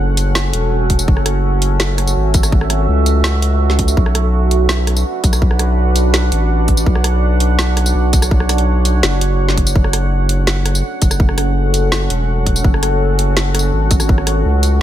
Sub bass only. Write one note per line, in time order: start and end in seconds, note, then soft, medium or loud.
0.00 0.52 F#1 loud
0.54 1.07 E1 medium
1.08 2.15 F#1 loud
2.16 2.87 G#1 loud
2.88 3.96 C#2 loud
3.97 5.04 B1 medium
5.24 6.31 B1 loud
6.32 6.85 A1 medium
6.86 7.93 B1 loud
7.95 9.02 B1 medium
9.04 9.74 F#1 loud
9.76 10.82 F#1 loud
11.02 12.09 F#1 loud
12.10 12.63 E1 medium
12.65 13.72 F#1 loud
13.73 14.44 G#1 medium
14.45 14.82 C#2 loud